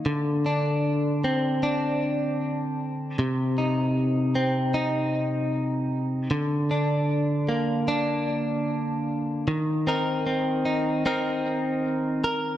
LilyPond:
\new Staff \with { instrumentName = "Clean electric guitar" } { \time 4/4 \key c \dorian \tempo 4 = 76 d8 d'4 c'8 d'2 | c8 ees'4 c'8 ees'2 | d8 d'4 bes8 d'2 | ees8 <c' ees' bes'>8 c'8 ees'8 <c' ees' bes'>4. bes'8 | }